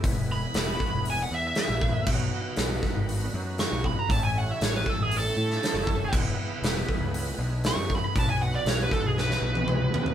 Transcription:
<<
  \new Staff \with { instrumentName = "Lead electric guitar" } { \time 4/4 \key e \major \tempo 4 = 118 r8 b''4. gis''16 fis''16 e''16 e''16 e''4 | r2. cis'''8 b''16 ais''16 | a''16 gis''16 fis''16 e''16 cis''16 b'16 a'16 gis'16 a'2 | r2. cis'''8 b''16 b''16 |
a''16 gis''16 fis''16 d''16 cis''16 b'16 a'16 gis'16 b'2 | }
  \new Staff \with { instrumentName = "Tonewheel organ" } { \time 4/4 \key e \major <b e' gis' b'>1 | <b dis' fis' b'>1 | <cis' e' a' cis''>1 | <b e' gis' b'>1 |
<b dis' fis' b'>1 | }
  \new Staff \with { instrumentName = "Picked electric bass" } { \clef bass \time 4/4 \key e \major e,,4 e,,8 r16 e,,8. e,8 r16 ais,,8. | b,,8 r8 b,,8 r16 gis,,8. fis,8. b,,8 r16 | a,,4 a,,8 r16 a,,8. a,8 r16 fis,,8. | e,,8 r8 e,,8 r16 cis,8. b,,8. fis,8 r16 |
b,,4 b,,8 r16 b,,8. b,,8 cis,8 dis,8 | }
  \new DrumStaff \with { instrumentName = "Drums" } \drummode { \time 4/4 <hho bd>4 <hho sn>8 bd8 hho4 <hho sn>8 bd8 | <cymc bd>4 <hho sn>8 <bd sn>8 hho4 <hho sn>8 bd8 | <hho bd>4 <hho sn>8 bd8 hho8. sn16 <hho sn>8 bd8 | <cymc bd>4 <hho sn>8 bd8 hho4 <hho sn>8 bd8 |
<hho bd>4 <hho sn>8 <bd sn>8 sn16 sn8 tommh16 toml8 tomfh16 tomfh16 | }
>>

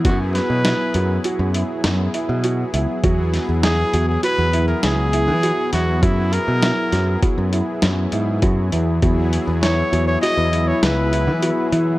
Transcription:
<<
  \new Staff \with { instrumentName = "Trumpet" } { \time 5/4 \key e \major \tempo 4 = 100 fis'8 b'4. r2. | r4 gis'8. gis'16 b'8. ais'16 gis'4. fis'8 | e'8 ais'4. r2. | r4 cis''8. cis''16 dis''8. cis''16 b'4. r8 | }
  \new Staff \with { instrumentName = "Grand piano" } { \time 5/4 \key e \major fis'4 e'8 fis'8 fis'8 e'4 e'8 fis'8 e'8 | fis'4 e'8 fis'8 fis'8 e'4 e'8 fis'8 e'8 | fis'4 e'8 fis'8 fis'8 e'4 e'8 fis'8 e'8 | fis'4 e'8 fis'8 fis'8 e'4 e'8 fis'8 e'8 | }
  \new Staff \with { instrumentName = "Trombone" } { \time 5/4 \key e \major r1 r4 | r1 r4 | r1 r4 | e'1~ e'4 | }
  \new Staff \with { instrumentName = "Analog synth pad" } { \time 5/4 \key e \major <fis b e' gis'>1~ <fis b e' gis'>4 | <fis b e' gis'>1~ <fis b e' gis'>4 | <fis b e' gis'>1~ <fis b e' gis'>4 | <fis b e' gis'>1~ <fis b e' gis'>4 | }
  \new Staff \with { instrumentName = "Picked electric bass" } { \clef bass \time 5/4 \key e \major fis,8. b,8 r16 fis,8 r16 fis,8 r16 fis,8 r16 b,8. cis,16 r16 | e,8. e,8. e,8 r16 e,8. cis,8. e8 r16 e,8 | fis,8. b,8 r16 fis,8 r16 fis,8 r16 fis,8 gis,8 fis,8 e,8 | e,8. e,8. e,8 r16 e,8. cis,8. e8 r16 e8 | }
  \new DrumStaff \with { instrumentName = "Drums" } \drummode { \time 5/4 <hh bd>8 <hh sn>8 <hh sn>8 hh8 hh8 hh8 <hh sn>8 hh8 hh8 hh8 | <hh bd>8 <hh sn>8 <hh sn>8 hh8 hh8 hh8 <hh sn>8 hh8 hh8 <hh sn>8 | <hh bd>8 hh8 <hh sn>8 <hh sn>8 <hh bd>8 hh8 <hh sn>8 hh8 <hh bd>8 hh8 | <hh bd>8 hh8 <hh sn>8 hh8 <hh sn>8 hh8 <hh sn>8 hh8 hh8 hh8 | }
>>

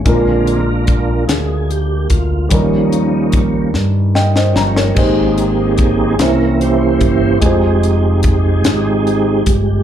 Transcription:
<<
  \new Staff \with { instrumentName = "Upright piano" } { \time 6/8 \key ees \mixolydian \tempo 4. = 49 << { r2. | r2 <ees'' g''>16 <c'' ees''>16 bes''16 <bes' des''>16~ | <bes' des''>16 r2 r8. | r2. | } \\ { <aes d' f' bes'>2. | <g des' ees' bes'>2. | <aes ees' g' c''>4. <bes des' e' c''>4. | <aes ees' f' c''>2. | } >> }
  \new Staff \with { instrumentName = "Upright piano" } { \clef bass \time 6/8 \key ees \mixolydian bes,4. r4. | ees4. r4. | aes,4. c4. | r2. | }
  \new Staff \with { instrumentName = "Tonewheel organ" } { \time 6/8 \key ees \mixolydian << { bes'4. aes'8 g'8 f'8 | ees'4 r2 | aes'4. bes'8 c''4 | aes'2~ aes'8 r8 | } \\ { <d' f'>4. r4. | bes4. r4. | ees'4. <des' e'>8 <e' g'>4 | c'2~ c'8 r8 | } >> }
  \new Staff \with { instrumentName = "Tonewheel organ" } { \time 6/8 \key ees \mixolydian <d aes c'>8 r2 r8 | <f g des'>4. r4 <f g des'>8 | <bes c' g'>4. <e bes>4. | <aes ees' g'>2. | }
  \new Staff \with { instrumentName = "Fingered electric bass" } { \clef bass \time 6/8 \key ees \mixolydian bes,,4. d,4 d,8 | ees,4. g,4 g,,8 | aes,,4. c,4 g,,8 | f,,4. aes,,4 g,,8 | }
  \new DrumStaff \with { instrumentName = "Drums" } \drummode { \time 6/8 <hh bd>8 hh8 <hh bd>8 <hh sn>8 hh8 <hh bd>8 | <hh bd>8 hh8 <hh bd>8 sn8 sn16 sn16 sn16 sn16 | <cymc bd>8 hh8 <hh bd>8 <hh sn>8 hh8 <hh bd>8 | <hh bd>8 hh8 <hh bd>8 <hh sn>8 hh8 <hh bd>8 | }
>>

